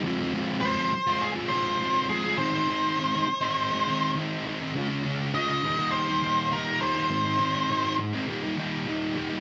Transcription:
<<
  \new Staff \with { instrumentName = "Lead electric guitar" } { \time 4/4 \key aes \major \tempo 4 = 102 r4 c''4 aes'8 c''4 aes'8 | c''2. r4 | r4 ees''4 c''4 bes'8 c''8~ | c''4. r2 r8 | }
  \new Staff \with { instrumentName = "Distorted electric guitar" } { \time 4/4 \key aes \major <f aes c' f'>16 <aes c' f'>16 <f aes c' f'>8 <f aes c' f'>16 <aes c' f'>8 <aes c' f'>8 <aes c' f'>16 <f aes c' f'>8 <f aes c' f'>8 <f aes c' f'>16 <aes c' f'>16 | <ees aes c' ees'>16 <aes c' ees'>16 <ees aes c' ees'>8 <ees aes c' ees'>16 <aes c' ees'>8 <aes c' ees'>8 <aes c' ees'>16 <ees aes c' ees'>8 <ees aes c' ees'>8 <ees aes c' ees'>16 <aes c' ees'>16 | <des aes des' f'>16 <aes des' f'>16 <des aes des' f'>8 <des aes des' f'>16 <aes des' f'>16 <ees g bes ees'>16 <g bes ees'>8 <g bes ees'>16 <ees g bes ees'>8 <ees g bes ees'>8 <ees g bes ees'>16 <g bes ees'>16 | <aes, ees aes c' ees'>16 <aes c' ees'>16 <ees aes c' ees'>8 <aes, ees aes c' ees'>16 <aes c' ees'>8 <aes c' ees'>16 <ees g bes ees'>16 <g bes ees'>16 <ees g bes ees'>8 <ees g bes ees'>8 <ees g bes ees'>16 <g bes ees'>16 | }
>>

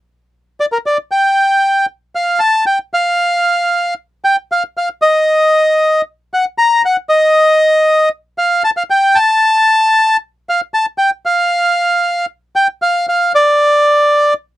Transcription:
\new Staff \with { instrumentName = "Bandoneon" } { \time 4/4 \key g \minor \tempo 4 = 115 r4 d''16 bes'16 d''8 g''4. r8 | \key f \mixolydian f''8 a''8 g''8 f''2 r8 | g''8 f''8 f''8 ees''2 r8 | ges''8 bes''8 ges''8 ees''2 r8 |
f''8 a''16 f''16 g''8 a''2 r8 | f''8 a''8 g''8 f''2 r8 | g''8 f''8 f''8 d''2 r8 | }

